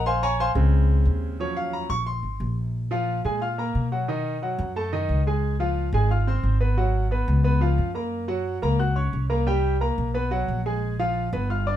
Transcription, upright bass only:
0.00 0.50 A#1 medium
0.55 1.02 C#2 loud
1.05 1.84 D#2 medium
1.90 2.21 A#1 loud
2.23 2.39 G#1 medium
2.40 3.19 A#1 medium
3.25 3.72 A#2 medium
3.75 4.53 B2 medium
4.59 5.06 F#2 loud
5.09 5.88 C#2 medium
5.93 6.40 G#1 loud
6.43 7.22 G#1 medium
7.28 7.75 C#2 loud
7.78 8.57 F#2 medium
8.63 9.10 C#2 medium
9.13 9.92 C2 medium
9.98 10.45 B1 medium
10.48 11.27 A#1 medium
11.33 11.77 G1 loud

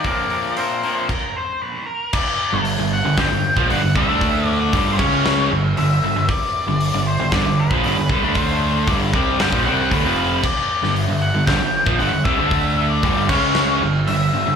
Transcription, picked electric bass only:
2.53 2.77 G1 medium
2.79 3.03 G1 medium
3.05 3.17 G1 medium
3.18 3.30 G1 medium
3.31 3.55 G1 medium
3.57 3.69 A#1 medium
3.70 3.82 G1 medium
3.83 3.95 G1 medium
3.96 4.07 C2 medium
4.08 4.69 D2 loud
4.73 4.97 G1 loud
4.99 5.47 C#2 medium
5.51 5.75 G1 medium
5.77 6.01 G1 medium
6.02 6.14 G1 medium
6.15 6.27 G1 medium
6.67 6.91 G1 medium
6.93 7.17 G1 medium
7.19 7.31 G1 medium
7.32 7.44 G1 loud
7.45 7.69 G1 medium
7.71 7.83 A#1 loud
7.83 7.96 G1 loud
7.96 8.09 G1 medium
8.09 8.22 C2 medium
8.22 8.83 D2 medium
8.88 9.12 G1 loud
9.13 9.38 C2 medium
9.40 9.52 G1 medium
9.53 9.65 A#1 loud
9.66 9.90 C2 loud
9.92 10.04 D2 medium
10.05 10.41 F1 medium
10.83 11.07 G1 medium
11.09 11.33 G1 medium
11.34 11.46 G1 medium
11.47 11.60 G1 medium
11.61 11.85 G1 medium
11.87 11.99 A#1 medium
12.00 12.12 G1 loud
12.12 12.25 G1 medium
12.25 12.37 C2 loud
12.39 13.00 D2 medium
13.03 13.28 G1 loud
13.29 13.78 C#2 medium
13.82 14.06 G1 medium
14.08 14.32 G1 medium
14.33 14.45 G1 medium
14.47 14.56 G1 medium

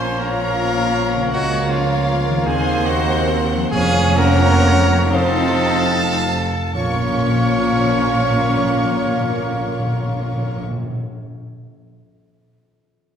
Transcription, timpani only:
3.72 5.08 F2 loud
6.74 6.81 A#2 medium
6.81 6.88 A#2 medium
6.88 6.95 A#2 medium
6.95 7.02 A#2 medium
7.02 7.08 A#2 medium
7.08 7.15 A#2 medium
7.15 7.22 A#2 loud
7.23 7.29 A#2 medium
7.29 7.36 A#2 medium
7.36 7.43 A#2 medium
7.43 7.49 A#2 medium
7.49 7.56 A#2 medium
7.57 7.64 A#2 loud
7.64 7.71 A#2 medium
7.71 7.78 A#2 medium
7.78 7.85 A#2 medium
7.86 7.93 A#2 loud
8.00 8.07 A#2 medium
8.07 8.14 A#2 medium
8.14 8.21 A#2 medium
8.21 8.28 A#2 medium
8.29 8.36 A#2 medium
8.36 8.43 A#2 medium
8.43 8.50 A#2 medium
8.50 8.56 A#2 loud
8.57 8.63 A#2 medium
8.63 8.70 A#2 medium
8.70 8.77 A#2 medium
8.77 8.84 A#2 medium
8.84 8.91 A#2 medium
8.91 8.98 A#2 medium
8.98 9.05 A#2 medium
9.05 9.12 A#2 medium
9.12 9.19 A#2 medium
9.19 9.25 A#2 medium
9.25 9.32 A#2 loud
9.32 9.38 A#2 medium
9.38 9.45 A#2 loud
9.45 9.52 A#2 medium
9.52 9.59 A#2 loud
9.59 9.66 A#2 medium
9.66 9.73 A#2 medium
9.73 9.79 A#2 medium
9.79 9.86 A#2 loud
9.87 9.94 A#2 medium
9.94 10.01 A#2 medium
10.01 10.08 A#2 medium
10.08 10.14 A#2 medium
10.14 10.21 A#2 medium
10.21 10.28 A#2 medium
10.29 10.35 A#2 medium
10.35 10.42 A#2 loud
10.42 10.49 A#2 loud
10.49 10.56 A#2 medium
10.56 10.63 A#2 medium
10.63 10.70 A#2 loud
10.71 10.78 A#2 loud
10.78 10.84 A#2 medium
10.85 10.91 A#2 medium
10.91 10.98 A#2 loud

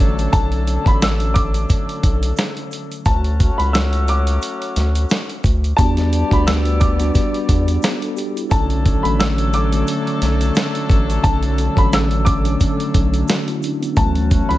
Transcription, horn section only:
0.00 2.66 F#3 loud
0.00 2.66 A3 loud
0.00 2.66 D4 medium
0.00 2.66 A4 loud
3.07 5.41 F#3 medium
3.07 5.41 A3 medium
3.07 5.41 C#4 loud
3.07 5.41 F#4 medium
5.78 8.13 B3 medium
5.78 8.13 D4 medium
5.78 8.13 G4 medium
5.78 8.13 D5 loud
8.49 13.57 F#3 medium
8.49 13.57 A3 loud
8.49 13.57 D4 medium
8.49 13.57 A4 loud
13.98 14.58 F#3 medium
13.98 14.58 A3 medium
13.98 14.58 C#4 loud
13.98 14.58 F#4 medium

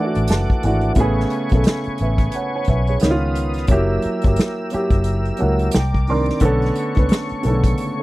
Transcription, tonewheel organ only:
0.00 0.92 A4 medium
0.00 0.93 F#5 medium
0.00 0.93 D6 medium
0.96 3.66 B4 medium
0.96 2.98 G#5 medium
0.96 2.99 C#6 medium
3.01 3.68 F5 medium
3.01 3.68 D#6 medium
3.69 5.72 G4 medium
3.69 6.39 A#4 medium
3.69 5.71 E6 medium
5.72 6.40 D5 medium
5.72 6.40 D6 medium
6.41 8.03 A3 medium
6.41 8.03 C#5 medium
6.41 8.03 C#6 medium

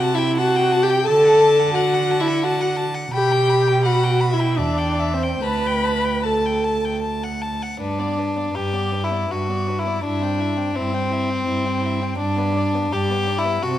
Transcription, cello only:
0.00 1.08 C3 medium
1.07 3.12 D3 medium
3.12 4.59 B2 medium
4.57 5.43 E2 medium
5.43 7.54 D2 medium
7.79 8.45 G2 medium
8.54 9.20 G2 medium
9.29 9.95 G2 medium
10.04 10.67 G2 medium
10.76 11.39 G2 medium
11.47 12.10 G2 medium
12.19 12.83 G2 medium
12.92 13.54 G2 medium
13.63 13.79 C3 medium

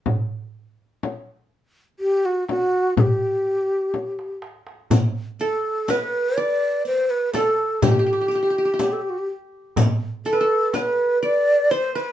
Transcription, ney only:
1.99 2.27 G4 medium
2.25 2.48 F#4 medium
2.48 2.94 F#4 medium
2.97 4.39 G4 medium
2.97 3.02 A4 medium
5.41 5.92 A4 medium
5.90 6.40 B4 medium
6.38 6.86 D5 loud
6.87 7.12 C5 medium
7.10 7.34 B4 medium
7.34 7.84 A4 medium
7.83 8.94 G4 medium
8.93 9.03 A4 medium
9.01 9.11 G4 medium
9.10 9.20 F#4 medium
9.19 9.28 G4 medium
10.26 10.76 A4 medium
10.74 11.22 B4 medium
11.23 11.72 D5 loud
11.71 11.95 C5 medium
11.96 12.12 B4 medium

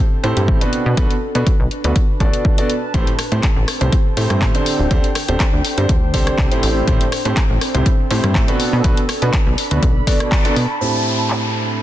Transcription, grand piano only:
0.24 0.58 A2 medium
0.24 0.58 C4 medium
0.24 0.58 E4 medium
0.24 0.58 G4 medium
0.24 0.58 A4 medium
0.24 0.58 C5 loud
0.61 0.95 B2 medium
0.61 0.95 B3 medium
0.61 0.95 D4 medium
0.61 0.95 F#4 medium
0.61 0.95 A4 medium
0.61 0.95 B4 medium
0.97 1.12 B2 medium
0.97 1.12 B3 medium
0.97 1.12 D4 medium
0.97 1.12 F#4 medium
0.97 1.12 A4 medium
0.97 1.12 B4 loud
1.35 1.48 B2 medium
1.35 1.48 B3 medium
1.35 1.48 D4 medium
1.35 1.48 F#4 medium
1.35 1.48 A4 medium
1.35 1.48 B4 medium
1.84 1.97 B2 medium
1.84 1.97 B3 medium
1.84 1.97 D4 medium
1.84 1.97 F#4 medium
1.84 1.97 A4 medium
1.84 1.97 B4 medium
2.20 2.55 B2 medium
2.20 2.55 B3 medium
2.20 2.55 D4 medium
2.20 2.55 F#4 medium
2.20 2.55 A4 medium
2.20 2.55 D5 medium
2.58 2.71 B2 medium
2.58 2.71 B3 medium
2.58 2.71 D4 medium
2.58 2.71 F#4 medium
2.58 2.71 A4 medium
2.58 2.71 D5 medium
2.94 3.08 A2 medium
2.94 3.08 C4 medium
2.94 3.08 E4 medium
2.94 3.08 G4 medium
2.94 3.08 A4 medium
2.94 3.08 C5 loud
3.32 3.45 A2 medium
3.32 3.45 C4 medium
3.32 3.45 E4 medium
3.32 3.45 G4 medium
3.32 3.45 A4 medium
3.32 3.45 C5 medium
3.81 3.94 A2 medium
3.81 3.94 C4 medium
3.81 3.94 E4 medium
3.81 3.94 G4 medium
3.81 3.94 A4 medium
3.81 3.94 C5 medium
4.17 4.52 A2 medium
4.17 4.52 C4 medium
4.17 4.52 E4 medium
4.17 4.52 G4 medium
4.17 4.52 A4 medium
4.17 4.52 C5 loud
4.55 4.88 D3 medium
4.55 4.88 C4 medium
4.55 4.88 D4 medium
4.55 4.88 G4 medium
4.55 4.88 A4 medium
4.55 4.88 C5 medium
4.91 5.05 D3 medium
4.91 5.05 C4 medium
4.91 5.05 D4 medium
4.91 5.05 G4 medium
4.91 5.05 A4 medium
4.91 5.05 C5 loud
5.29 5.41 D3 medium
5.29 5.41 C4 medium
5.29 5.41 D4 medium
5.29 5.41 G4 medium
5.29 5.41 A4 medium
5.29 5.41 C5 loud
5.78 5.91 D3 medium
5.78 5.91 C4 medium
5.78 5.91 D4 medium
5.78 5.91 G4 medium
5.78 5.91 A4 medium
5.78 5.91 C5 medium
6.14 6.48 D3 medium
6.14 6.48 C4 medium
6.14 6.48 D4 medium
6.14 6.48 G4 medium
6.14 6.48 A4 medium
6.14 6.48 C5 loud
6.52 6.85 A2 medium
6.52 6.85 C4 medium
6.52 6.85 E4 medium
6.52 6.85 G4 medium
6.52 6.85 A4 medium
6.52 6.85 C5 medium
6.87 7.02 A2 medium
6.87 7.02 C4 medium
6.87 7.02 E4 medium
6.87 7.02 G4 medium
6.87 7.02 A4 medium
6.87 7.02 C5 loud
7.25 7.38 A2 medium
7.25 7.38 C4 medium
7.25 7.38 E4 medium
7.25 7.38 G4 medium
7.25 7.38 A4 medium
7.25 7.38 C5 medium
7.74 7.87 A2 medium
7.74 7.87 C4 medium
7.74 7.87 E4 medium
7.74 7.87 G4 medium
7.74 7.87 A4 medium
7.74 7.87 C5 medium
8.10 8.45 A2 medium
8.10 8.45 C4 medium
8.10 8.45 E4 medium
8.10 8.45 G4 medium
8.10 8.45 A4 medium
8.10 8.45 C5 loud
8.48 8.81 B2 medium
8.48 8.82 B3 medium
8.48 8.81 D4 medium
8.48 8.82 F#4 medium
8.48 8.81 A4 medium
8.48 8.82 B4 medium
8.84 8.99 B2 medium
8.84 8.99 B3 medium
8.84 8.99 D4 medium
8.84 8.99 F#4 medium
8.84 8.99 A4 medium
8.84 8.99 B4 loud
9.22 9.35 B2 medium
9.22 9.35 B3 medium
9.22 9.35 D4 medium
9.22 9.35 F#4 medium
9.22 9.35 A4 medium
9.22 9.35 B4 loud
9.71 9.84 B2 medium
9.71 9.84 B3 medium
9.71 9.84 D4 medium
9.71 9.84 F#4 medium
9.71 9.84 A4 medium
9.71 9.84 B4 medium
10.07 10.42 B2 medium
10.07 10.42 B3 medium
10.07 10.42 D4 medium
10.07 10.42 F#4 medium
10.07 10.42 A4 medium
10.07 10.42 D5 medium
10.45 10.58 B2 medium
10.45 10.58 B3 medium
10.45 10.58 D4 medium
10.45 10.58 F#4 medium
10.45 10.58 A4 medium
10.45 10.58 D5 medium
10.81 11.82 A2 medium
10.81 11.82 C4 medium
10.81 11.82 E4 medium
10.81 11.82 G4 medium
10.81 11.82 A4 medium
10.81 11.82 C5 medium

